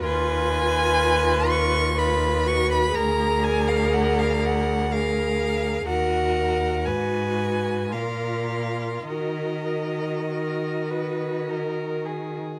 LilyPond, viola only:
\new Staff \with { instrumentName = "Viola" } { \time 3/4 \key ees \minor \tempo 4 = 60 f'2 f'8 ges'8 | aes'2 aes'4 | ges'4 ges'4 f'4 | ges'2. | }